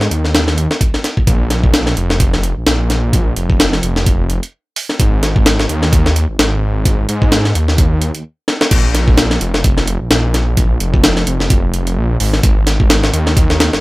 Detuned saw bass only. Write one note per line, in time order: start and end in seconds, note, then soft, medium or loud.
0.11 0.67 D#2 medium
1.27 1.94 A#1 loud
1.97 2.53 F1 loud
2.57 2.65 A#1 soft
2.67 3.34 A#1 medium
3.36 3.80 F1 medium
3.83 4.39 F1 medium
5.00 5.67 G#1 loud
5.69 6.26 D#2 medium
6.29 6.37 G#1 soft
6.39 7.06 G#1 medium
7.09 7.53 G#2 medium
7.55 8.12 D#2 loud
8.15 8.23 D#2 soft
8.71 9.39 A#1 loud
9.41 9.98 F1 medium
10.01 10.09 A#1 soft
10.10 10.78 A#1 medium
10.81 11.25 F1 medium
11.27 11.98 F1 medium
11.97 12.17 A#1 loud
12.20 12.40 G#1 loud
12.43 13.11 G#1 loud
13.13 13.70 D#2 loud
13.73 13.80 G#1 soft